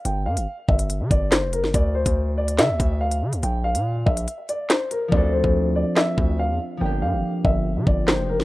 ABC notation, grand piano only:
X:1
M:4/4
L:1/8
Q:1/4=142
K:Dm
V:1 name="Grand piano"
g f2 e2 d c B | d c2 d e2 f z | g f2 e2 d c B | d c2 d e2 f z |
g f2 e2 d c B |]